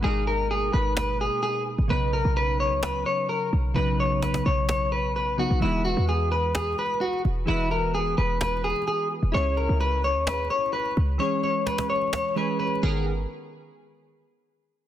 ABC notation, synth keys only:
X:1
M:4/4
L:1/8
Q:1/4=129
K:B
V:1 name="Synth keys"
[B,,G,A,DA]8 | [C,F,B,DB]8 | [C,F,B,DB]6- [C,F,B,DB] [C,F,B,DB] | [E,G,B,FB]8 |
[E,G,B,FB]8 | [G,CEGc]8 | [E,G,CGc]4- [E,G,CGc] [E,G,CGc]2 [D,B,GA] | z8 |]